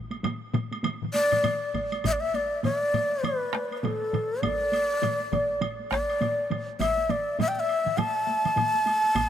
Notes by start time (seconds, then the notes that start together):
0.11 taiko high, high woodblock
0.23 taiko low-mid, taiko mid, taiko high, high woodblock
0.53 taiko low-mid, taiko mid, taiko high, high woodblock
0.72 taiko high, high woodblock
0.83 taiko low-mid, taiko mid, taiko high, high woodblock
1.02 taiko low-mid, taiko mid
1.13 D5, taiko high, high woodblock
1.32 taiko low-mid, taiko mid, taiko high, high woodblock
1.44 taiko low-mid, taiko mid, taiko high, high woodblock
1.74 taiko, taiko low-mid, taiko mid, taiko high, high woodblock
1.92 taiko high, high woodblock
2.04 E5, taiko, taiko low-mid, taiko mid, taiko high, high woodblock
2.12 D5
2.20 E5, taiko high
2.34 D5, taiko high, high woodblock
2.64 C#5, taiko low-mid, taiko mid, taiko high, high woodblock
2.75 D5
2.82 taiko high
2.94 taiko low-mid, taiko mid, taiko high, high woodblock
3.12 taiko high
3.23 B4, taiko low-mid, taiko mid, taiko high, high woodblock
3.42 taiko high
3.53 taiko rim, taiko high
3.72 taiko high, high woodblock
3.77 B4
3.83 A4, taiko low-mid, taiko mid, taiko high, high woodblock
4.02 taiko high
4.13 taiko low-mid, taiko mid, high woodblock
4.31 taiko high
4.41 D5, taiko, taiko low-mid, taiko mid, taiko high, high woodblock
4.61 taiko high
4.72 taiko high, high woodblock
5.02 taiko low-mid, taiko mid, taiko high, high woodblock
5.19 taiko high
5.32 taiko, taiko low-mid, taiko mid, taiko high, high woodblock
5.50 taiko high
5.61 taiko low-mid, taiko mid, taiko high, high woodblock
5.80 taiko high
5.91 D5, taiko rim, taiko, taiko high
6.09 taiko high, high woodblock
6.21 taiko low-mid, taiko mid, taiko high, high woodblock
6.38 taiko high
6.50 taiko low-mid, taiko mid, taiko high, high woodblock
6.68 taiko high
6.79 E5, taiko, taiko low-mid, taiko mid, taiko high, high woodblock
6.97 taiko high
7.09 D5, taiko low-mid, taiko mid, taiko high, high woodblock
7.39 E5, taiko low-mid, taiko mid, taiko high, high woodblock
7.48 G5
7.55 G5, taiko high
7.60 E5
7.69 high woodblock
7.86 taiko low-mid, taiko mid, taiko high
7.98 A5, taiko low-mid, taiko mid, taiko high, high woodblock
8.27 taiko high
8.45 taiko low-mid, taiko mid, taiko high, high woodblock
8.56 taiko low-mid, taiko mid, taiko high, high woodblock
8.74 taiko high
8.86 taiko high, high woodblock
9.04 taiko high
9.15 taiko, taiko low-mid, taiko mid, taiko high, high woodblock